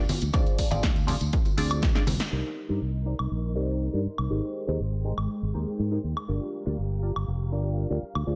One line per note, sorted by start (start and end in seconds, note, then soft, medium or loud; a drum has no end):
0.09 open hi-hat loud
0.09 high conga medium
0.21 0.30 D2 medium
0.21 closed hi-hat medium
0.21 tambourine medium
0.33 0.43 D2 loud
0.33 0.68 C4 medium
0.33 0.68 D4 medium
0.33 0.68 F4 medium
0.33 0.68 G#4 medium
0.33 0.68 D5 medium
0.33 kick loud
0.33 closed hi-hat medium
0.33 tambourine medium
0.33 high woodblock medium
0.46 closed hi-hat soft
0.46 tambourine soft
0.58 kick medium
0.58 open hi-hat loud
0.71 0.80 G#1 medium
0.71 0.82 C4 medium
0.71 0.82 D4 medium
0.71 0.82 F4 medium
0.71 0.83 G#4 medium
0.71 0.83 D5 loud
0.71 closed hi-hat medium
0.71 tambourine medium
0.71 high conga medium
0.83 1.15 D2 loud
0.83 kick loud
0.83 snare loud
0.83 closed hi-hat medium
0.83 tambourine medium
0.96 closed hi-hat soft
0.96 tambourine soft
1.07 1.15 C4 medium
1.07 1.15 D4 medium
1.07 1.15 F4 medium
1.07 1.15 G#4 medium
1.07 1.16 D5 loud
1.07 snare soft
1.07 open hi-hat loud
1.07 low conga medium
1.21 1.29 D2 medium
1.21 closed hi-hat medium
1.21 tambourine medium
1.33 kick loud
1.33 closed hi-hat medium
1.33 tambourine medium
1.45 closed hi-hat soft
1.45 tambourine soft
1.45 high conga medium
1.57 1.89 D2 loud
1.57 1.92 C4 medium
1.57 1.92 D4 medium
1.57 1.92 F4 medium
1.57 1.92 G#4 medium
1.57 1.93 D5 medium
1.57 open hi-hat loud
1.70 closed hi-hat medium
1.70 tambourine medium
1.70 high woodblock medium
1.82 kick loud
1.82 snare medium
1.82 closed hi-hat medium
1.82 tambourine medium
1.95 2.02 C4 medium
1.95 2.02 D4 medium
1.95 2.02 F4 medium
1.95 2.02 G#4 medium
1.95 2.03 D5 medium
1.95 snare medium
1.95 closed hi-hat soft
1.95 tambourine soft
2.07 2.16 C2 loud
2.07 open hi-hat loud
2.07 high conga loud
2.20 snare medium
2.20 closed hi-hat medium
2.20 tambourine medium
2.31 2.41 C2 loud
2.31 2.66 D#4 medium
2.31 4.29 D#4 medium
2.31 2.66 G4 medium
2.31 2.67 A#4 medium
2.31 4.29 A#4 medium
2.31 2.67 C5 medium
2.31 2.67 D5 medium
2.31 6.25 C6 medium
2.69 2.78 G2 medium
2.69 2.81 D#4 medium
2.69 2.81 G4 medium
2.69 2.81 A#4 medium
2.69 2.81 C5 medium
2.69 2.81 D5 medium
2.82 3.13 C2 medium
3.06 3.14 D#4 medium
3.06 3.14 G4 medium
3.06 3.14 A#4 medium
3.06 3.14 C5 medium
3.06 3.14 D5 medium
3.19 3.28 C2 medium
3.19 high woodblock medium
3.31 3.56 A#1 medium
3.55 3.87 C2 medium
3.55 3.90 D#4 medium
3.55 3.90 G4 medium
3.55 3.90 A#4 medium
3.55 3.90 C5 medium
3.55 3.91 D5 medium
3.93 4.05 G2 medium
3.93 4.00 D#4 medium
3.93 4.00 G4 medium
3.93 4.01 A#4 medium
3.93 4.01 C5 medium
3.93 4.01 D5 medium
4.06 muted fingered electric bass stroke soft
4.18 4.27 C2 medium
4.18 high woodblock medium
4.30 4.39 G#1 medium
4.30 6.27 G#3 medium
4.30 4.65 D#4 medium
4.30 4.65 G4 medium
4.30 4.65 G#4 medium
4.30 4.65 A#4 medium
4.30 4.65 C5 medium
4.30 6.27 G5 medium
4.67 4.76 D#2 medium
4.67 4.79 D#4 medium
4.67 4.79 G4 medium
4.67 4.79 G#4 medium
4.67 4.79 A#4 medium
4.67 4.79 C5 medium
4.80 5.11 G#1 medium
5.04 5.12 D#4 medium
5.04 5.12 G4 medium
5.04 5.12 G#4 medium
5.04 5.12 A#4 medium
5.04 5.13 C5 loud
5.17 5.26 G#1 medium
5.17 high woodblock medium
5.43 5.51 G#1 medium
5.54 5.63 D#2 medium
5.54 5.89 D#4 medium
5.54 5.89 G4 medium
5.54 5.89 G#4 medium
5.54 5.89 A#4 medium
5.54 5.89 C5 medium
5.67 muted fingered electric bass stroke soft
5.79 5.97 G#2 medium
5.91 5.99 D#4 medium
5.91 5.99 G4 medium
5.91 5.99 G#4 medium
5.91 5.99 A#4 medium
5.91 5.99 C5 medium
6.04 6.13 D#2 medium
6.17 high woodblock medium
6.28 6.38 G1 medium
6.28 6.63 D4 medium
6.28 6.63 F4 medium
6.28 6.63 G4 medium
6.28 8.01 G4 medium
6.28 6.63 A#4 medium
6.28 6.63 D5 medium
6.28 8.36 F5 medium
6.28 8.01 A#5 medium
6.65 6.75 D2 medium
6.65 6.77 D4 medium
6.65 6.77 F4 medium
6.65 6.77 G4 medium
6.65 6.78 A#4 medium
6.65 6.78 D5 loud
6.78 7.10 G1 medium
7.02 7.10 D4 medium
7.02 7.10 F4 medium
7.02 7.11 G4 medium
7.02 7.11 A#4 medium
7.02 7.11 D5 medium
7.16 7.24 G1 medium
7.16 high woodblock medium
7.28 7.53 F1 medium
7.52 7.84 G1 loud
7.52 7.87 D4 medium
7.52 7.87 F4 medium
7.52 7.87 G4 medium
7.52 7.87 A#4 medium
7.52 7.87 D5 medium
7.90 8.02 D2 medium
7.90 7.97 D4 medium
7.90 7.97 F4 medium
7.90 7.97 G4 medium
7.90 7.98 A#4 medium
7.90 7.98 D5 medium
8.02 8.36 C5 medium
8.02 8.36 D6 medium
8.02 muted fingered electric bass stroke soft
8.15 8.24 D2 medium
8.15 high woodblock medium
8.27 8.36 D2 loud
8.27 8.36 D4 medium
8.27 8.36 F4 medium
8.27 8.36 G#4 medium
8.27 8.36 C5 medium
8.27 8.36 D5 medium